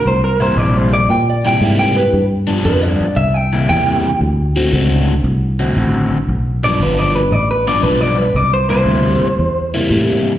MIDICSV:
0, 0, Header, 1, 5, 480
1, 0, Start_track
1, 0, Tempo, 518583
1, 53, Time_signature, 4, 2, 24, 8
1, 9612, End_track
2, 0, Start_track
2, 0, Title_t, "Clean electric guitar"
2, 0, Program_c, 0, 27
2, 68, Note_on_c, 0, 72, 99
2, 215, Note_off_c, 0, 72, 0
2, 222, Note_on_c, 0, 70, 110
2, 373, Note_off_c, 0, 70, 0
2, 388, Note_on_c, 0, 72, 93
2, 536, Note_off_c, 0, 72, 0
2, 536, Note_on_c, 0, 74, 97
2, 712, Note_off_c, 0, 74, 0
2, 712, Note_on_c, 0, 72, 98
2, 858, Note_off_c, 0, 72, 0
2, 866, Note_on_c, 0, 74, 92
2, 1014, Note_off_c, 0, 74, 0
2, 1021, Note_on_c, 0, 79, 96
2, 1172, Note_off_c, 0, 79, 0
2, 1201, Note_on_c, 0, 74, 91
2, 1342, Note_off_c, 0, 74, 0
2, 1358, Note_on_c, 0, 79, 87
2, 1501, Note_off_c, 0, 79, 0
2, 1660, Note_on_c, 0, 79, 97
2, 1812, Note_off_c, 0, 79, 0
2, 1818, Note_on_c, 0, 71, 116
2, 2075, Note_off_c, 0, 71, 0
2, 2454, Note_on_c, 0, 71, 103
2, 2608, Note_off_c, 0, 71, 0
2, 2608, Note_on_c, 0, 74, 98
2, 2921, Note_off_c, 0, 74, 0
2, 2929, Note_on_c, 0, 76, 96
2, 3094, Note_off_c, 0, 76, 0
2, 3094, Note_on_c, 0, 79, 94
2, 3404, Note_off_c, 0, 79, 0
2, 3418, Note_on_c, 0, 79, 109
2, 3881, Note_off_c, 0, 79, 0
2, 6149, Note_on_c, 0, 74, 107
2, 6319, Note_off_c, 0, 74, 0
2, 6319, Note_on_c, 0, 71, 81
2, 6466, Note_off_c, 0, 71, 0
2, 6466, Note_on_c, 0, 74, 83
2, 6616, Note_off_c, 0, 74, 0
2, 6623, Note_on_c, 0, 71, 83
2, 6779, Note_off_c, 0, 71, 0
2, 6779, Note_on_c, 0, 74, 94
2, 6932, Note_off_c, 0, 74, 0
2, 6949, Note_on_c, 0, 71, 88
2, 7097, Note_off_c, 0, 71, 0
2, 7107, Note_on_c, 0, 74, 86
2, 7245, Note_off_c, 0, 74, 0
2, 7249, Note_on_c, 0, 71, 89
2, 7412, Note_off_c, 0, 71, 0
2, 7412, Note_on_c, 0, 74, 97
2, 7569, Note_off_c, 0, 74, 0
2, 7569, Note_on_c, 0, 71, 83
2, 7738, Note_off_c, 0, 71, 0
2, 7738, Note_on_c, 0, 74, 96
2, 7892, Note_off_c, 0, 74, 0
2, 7901, Note_on_c, 0, 72, 91
2, 8041, Note_off_c, 0, 72, 0
2, 8052, Note_on_c, 0, 72, 98
2, 8985, Note_off_c, 0, 72, 0
2, 9612, End_track
3, 0, Start_track
3, 0, Title_t, "Overdriven electric guitar"
3, 0, Program_c, 1, 29
3, 373, Note_on_c, 1, 64, 94
3, 381, Note_on_c, 1, 58, 98
3, 382, Note_on_c, 1, 55, 79
3, 389, Note_on_c, 1, 48, 77
3, 525, Note_off_c, 1, 48, 0
3, 526, Note_off_c, 1, 55, 0
3, 529, Note_off_c, 1, 58, 0
3, 531, Note_off_c, 1, 64, 0
3, 537, Note_on_c, 1, 48, 69
3, 537, Note_on_c, 1, 55, 78
3, 540, Note_on_c, 1, 58, 79
3, 544, Note_on_c, 1, 64, 80
3, 905, Note_off_c, 1, 48, 0
3, 905, Note_off_c, 1, 55, 0
3, 906, Note_off_c, 1, 58, 0
3, 908, Note_off_c, 1, 64, 0
3, 1342, Note_on_c, 1, 64, 99
3, 1347, Note_on_c, 1, 58, 99
3, 1351, Note_on_c, 1, 55, 85
3, 1353, Note_on_c, 1, 48, 85
3, 1485, Note_off_c, 1, 48, 0
3, 1491, Note_off_c, 1, 55, 0
3, 1496, Note_off_c, 1, 64, 0
3, 1496, Note_on_c, 1, 48, 80
3, 1498, Note_off_c, 1, 58, 0
3, 1502, Note_on_c, 1, 55, 82
3, 1508, Note_on_c, 1, 58, 79
3, 1509, Note_on_c, 1, 64, 90
3, 1865, Note_off_c, 1, 48, 0
3, 1868, Note_off_c, 1, 55, 0
3, 1870, Note_off_c, 1, 58, 0
3, 1871, Note_off_c, 1, 64, 0
3, 2289, Note_on_c, 1, 62, 100
3, 2299, Note_on_c, 1, 53, 83
3, 2299, Note_on_c, 1, 59, 86
3, 2302, Note_on_c, 1, 43, 76
3, 2449, Note_off_c, 1, 62, 0
3, 2450, Note_off_c, 1, 43, 0
3, 2454, Note_off_c, 1, 53, 0
3, 2454, Note_off_c, 1, 59, 0
3, 2461, Note_on_c, 1, 43, 68
3, 2467, Note_on_c, 1, 53, 84
3, 2468, Note_on_c, 1, 59, 80
3, 2469, Note_on_c, 1, 62, 81
3, 2827, Note_off_c, 1, 43, 0
3, 2830, Note_off_c, 1, 53, 0
3, 2831, Note_off_c, 1, 59, 0
3, 2831, Note_off_c, 1, 62, 0
3, 3269, Note_on_c, 1, 64, 100
3, 3272, Note_on_c, 1, 55, 92
3, 3274, Note_on_c, 1, 58, 104
3, 3280, Note_on_c, 1, 48, 75
3, 3411, Note_off_c, 1, 48, 0
3, 3419, Note_off_c, 1, 64, 0
3, 3421, Note_off_c, 1, 55, 0
3, 3422, Note_off_c, 1, 58, 0
3, 3423, Note_on_c, 1, 48, 82
3, 3430, Note_on_c, 1, 55, 85
3, 3433, Note_on_c, 1, 58, 92
3, 3438, Note_on_c, 1, 64, 93
3, 3788, Note_off_c, 1, 48, 0
3, 3792, Note_off_c, 1, 55, 0
3, 3793, Note_off_c, 1, 58, 0
3, 3796, Note_off_c, 1, 64, 0
3, 4224, Note_on_c, 1, 66, 99
3, 4226, Note_on_c, 1, 60, 89
3, 4231, Note_on_c, 1, 57, 82
3, 4233, Note_on_c, 1, 50, 77
3, 4362, Note_off_c, 1, 57, 0
3, 4363, Note_off_c, 1, 50, 0
3, 4366, Note_off_c, 1, 60, 0
3, 4373, Note_off_c, 1, 66, 0
3, 4374, Note_on_c, 1, 50, 68
3, 4374, Note_on_c, 1, 57, 71
3, 4377, Note_on_c, 1, 60, 79
3, 4384, Note_on_c, 1, 66, 80
3, 4744, Note_off_c, 1, 50, 0
3, 4744, Note_off_c, 1, 57, 0
3, 4745, Note_off_c, 1, 60, 0
3, 4749, Note_off_c, 1, 66, 0
3, 5180, Note_on_c, 1, 66, 102
3, 5182, Note_on_c, 1, 60, 93
3, 5187, Note_on_c, 1, 57, 92
3, 5193, Note_on_c, 1, 50, 91
3, 5327, Note_off_c, 1, 50, 0
3, 5330, Note_off_c, 1, 57, 0
3, 5335, Note_off_c, 1, 66, 0
3, 5336, Note_off_c, 1, 60, 0
3, 5338, Note_on_c, 1, 50, 80
3, 5341, Note_on_c, 1, 57, 77
3, 5348, Note_on_c, 1, 60, 88
3, 5349, Note_on_c, 1, 66, 95
3, 5706, Note_off_c, 1, 50, 0
3, 5708, Note_off_c, 1, 57, 0
3, 5711, Note_off_c, 1, 60, 0
3, 5712, Note_off_c, 1, 66, 0
3, 6144, Note_on_c, 1, 62, 97
3, 6152, Note_on_c, 1, 53, 82
3, 6153, Note_on_c, 1, 59, 86
3, 6157, Note_on_c, 1, 43, 77
3, 6298, Note_off_c, 1, 62, 0
3, 6300, Note_off_c, 1, 43, 0
3, 6301, Note_off_c, 1, 53, 0
3, 6302, Note_off_c, 1, 59, 0
3, 6311, Note_on_c, 1, 43, 69
3, 6315, Note_on_c, 1, 59, 71
3, 6316, Note_on_c, 1, 53, 75
3, 6320, Note_on_c, 1, 62, 78
3, 6673, Note_off_c, 1, 43, 0
3, 6675, Note_off_c, 1, 59, 0
3, 6676, Note_off_c, 1, 53, 0
3, 6678, Note_off_c, 1, 62, 0
3, 7105, Note_on_c, 1, 62, 90
3, 7112, Note_on_c, 1, 53, 84
3, 7113, Note_on_c, 1, 59, 90
3, 7118, Note_on_c, 1, 43, 80
3, 7249, Note_off_c, 1, 43, 0
3, 7256, Note_off_c, 1, 53, 0
3, 7257, Note_off_c, 1, 59, 0
3, 7258, Note_off_c, 1, 62, 0
3, 7260, Note_on_c, 1, 43, 80
3, 7267, Note_on_c, 1, 53, 82
3, 7268, Note_on_c, 1, 59, 82
3, 7273, Note_on_c, 1, 62, 90
3, 7628, Note_off_c, 1, 43, 0
3, 7631, Note_off_c, 1, 53, 0
3, 7632, Note_off_c, 1, 59, 0
3, 7634, Note_off_c, 1, 62, 0
3, 8048, Note_on_c, 1, 64, 94
3, 8051, Note_on_c, 1, 58, 93
3, 8053, Note_on_c, 1, 55, 90
3, 8056, Note_on_c, 1, 48, 84
3, 8192, Note_off_c, 1, 48, 0
3, 8198, Note_off_c, 1, 55, 0
3, 8203, Note_on_c, 1, 48, 68
3, 8204, Note_off_c, 1, 58, 0
3, 8205, Note_off_c, 1, 64, 0
3, 8209, Note_on_c, 1, 55, 70
3, 8215, Note_on_c, 1, 58, 80
3, 8216, Note_on_c, 1, 64, 80
3, 8580, Note_off_c, 1, 48, 0
3, 8583, Note_off_c, 1, 55, 0
3, 8586, Note_off_c, 1, 58, 0
3, 8586, Note_off_c, 1, 64, 0
3, 9018, Note_on_c, 1, 64, 104
3, 9022, Note_on_c, 1, 58, 97
3, 9023, Note_on_c, 1, 55, 95
3, 9029, Note_on_c, 1, 48, 76
3, 9166, Note_off_c, 1, 48, 0
3, 9170, Note_off_c, 1, 55, 0
3, 9175, Note_off_c, 1, 64, 0
3, 9177, Note_off_c, 1, 58, 0
3, 9178, Note_on_c, 1, 48, 77
3, 9181, Note_on_c, 1, 55, 89
3, 9189, Note_on_c, 1, 58, 85
3, 9192, Note_on_c, 1, 64, 78
3, 9547, Note_off_c, 1, 48, 0
3, 9549, Note_off_c, 1, 55, 0
3, 9552, Note_off_c, 1, 58, 0
3, 9554, Note_off_c, 1, 64, 0
3, 9612, End_track
4, 0, Start_track
4, 0, Title_t, "Fingered electric bass"
4, 0, Program_c, 2, 33
4, 51, Note_on_c, 2, 36, 83
4, 517, Note_off_c, 2, 36, 0
4, 526, Note_on_c, 2, 34, 97
4, 995, Note_off_c, 2, 34, 0
4, 1015, Note_on_c, 2, 46, 96
4, 1480, Note_off_c, 2, 46, 0
4, 1489, Note_on_c, 2, 44, 89
4, 1956, Note_off_c, 2, 44, 0
4, 1976, Note_on_c, 2, 43, 87
4, 2440, Note_off_c, 2, 43, 0
4, 2452, Note_on_c, 2, 41, 91
4, 2753, Note_off_c, 2, 41, 0
4, 2930, Note_on_c, 2, 36, 90
4, 3397, Note_off_c, 2, 36, 0
4, 3421, Note_on_c, 2, 40, 105
4, 3883, Note_off_c, 2, 40, 0
4, 3894, Note_on_c, 2, 38, 88
4, 4359, Note_off_c, 2, 38, 0
4, 4378, Note_on_c, 2, 37, 101
4, 4841, Note_off_c, 2, 37, 0
4, 4849, Note_on_c, 2, 36, 101
4, 5317, Note_off_c, 2, 36, 0
4, 5336, Note_on_c, 2, 33, 98
4, 5801, Note_off_c, 2, 33, 0
4, 5818, Note_on_c, 2, 35, 87
4, 6282, Note_off_c, 2, 35, 0
4, 6294, Note_on_c, 2, 31, 96
4, 6760, Note_off_c, 2, 31, 0
4, 6774, Note_on_c, 2, 33, 95
4, 7240, Note_off_c, 2, 33, 0
4, 7250, Note_on_c, 2, 35, 97
4, 7718, Note_off_c, 2, 35, 0
4, 7726, Note_on_c, 2, 36, 85
4, 8193, Note_off_c, 2, 36, 0
4, 8198, Note_on_c, 2, 38, 90
4, 8507, Note_off_c, 2, 38, 0
4, 8690, Note_on_c, 2, 40, 87
4, 9158, Note_off_c, 2, 40, 0
4, 9166, Note_on_c, 2, 45, 94
4, 9612, Note_off_c, 2, 45, 0
4, 9612, End_track
5, 0, Start_track
5, 0, Title_t, "Muted fingered electric bass strokes"
5, 2780, Note_on_c, 9, 29, 43
5, 2873, Note_off_c, 9, 29, 0
5, 8531, Note_on_c, 9, 29, 45
5, 8623, Note_off_c, 9, 29, 0
5, 9612, End_track
0, 0, End_of_file